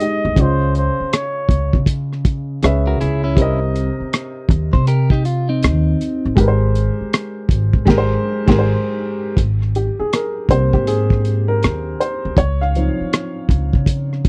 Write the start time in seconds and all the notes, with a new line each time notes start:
Already playing: D#5
0.00 G#3 D#4 G4 D#5, closed hi-hat
0.25 D2
0.35 C#2 C#3 C#4 F4, kick, closed hi-hat
0.41 C5 D#5
0.75 C5, closed hi-hat
1.00 muted upright bass stroke
1.13 C#5, cross-stick, closed hi-hat
1.49 C#2, kick, closed hi-hat
1.73 C#3, kick
1.86 kick, closed hi-hat
2.13 cross-stick
2.25 kick, closed hi-hat
2.62 C#2 C#3 C#4 B4 E5, cross-stick, closed hi-hat
2.87 F#4 A#4
3.01 C#2 E4 G#4, closed hi-hat
3.24 C#4 E4
3.35 C2 C3 C4, kick, closed hi-hat
3.40 A#4 D#5
3.76 closed hi-hat
4.00 muted upright bass stroke
4.13 cross-stick, closed hi-hat
4.49 D#2, kick, closed hi-hat
4.73 C3 C5, kick
4.87 G4 A#4, closed hi-hat
5.10 D#4 G4, kick, cross-stick
5.25 F4, closed hi-hat
5.49 C4 D#4
5.63 D#2, cross-stick, closed hi-hat
6.01 closed hi-hat
6.25 A1
6.35 G#1 G#3 G4 A#4, kick, closed hi-hat
6.41 B4
6.48 C5
6.75 closed hi-hat
7.01 muted upright bass stroke
7.13 cross-stick, closed hi-hat
7.49 G#1, kick, closed hi-hat
7.73 G#2, kick
7.85 G#1 G#3 G4, kick, snare, crash
7.89 A#4
7.98 C5
8.46 G#1 G#3 G4 G#4 A#4 C5, kick, snare, crash
8.59 C5
9.37 G#1, kick, closed hi-hat
9.62 cross-stick
9.75 G4, closed hi-hat
9.99 G#4, muted upright bass stroke
10.13 A#4, cross-stick, closed hi-hat
10.49 C2 A#3 C4 G4 C5, kick, closed hi-hat
10.73 G#2 G4, kick
10.87 G#4, closed hi-hat
11.10 kick, cross-stick
11.25 closed hi-hat
11.48 A#4
11.63 D#2, cross-stick, closed hi-hat
12.00 C5, closed hi-hat
12.25 D2
12.37 C#2 C#5, kick, closed hi-hat
12.61 F5, cross-stick
12.75 F3 C4 D#4, closed hi-hat
13.00 muted upright bass stroke
13.13 cross-stick, closed hi-hat
13.49 C#2, kick, closed hi-hat
13.73 C#3, kick
13.86 kick, closed hi-hat
14.13 cross-stick
14.25 kick, closed hi-hat